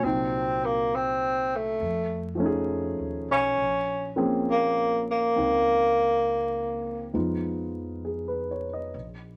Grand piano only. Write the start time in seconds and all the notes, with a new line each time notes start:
Already playing: F#3
0.00 A#2 C4
0.06 D#4 F#4
2.35 F3 A3
2.40 C#4 D#4
2.46 G#4
4.16 F3 A#3 C4 C#4 G#4
5.36 C4 D#4 A#4
7.13 F3 G#3 B3 D#4 F4
8.05 G#4
8.28 B4
8.51 C#5
8.73 D#5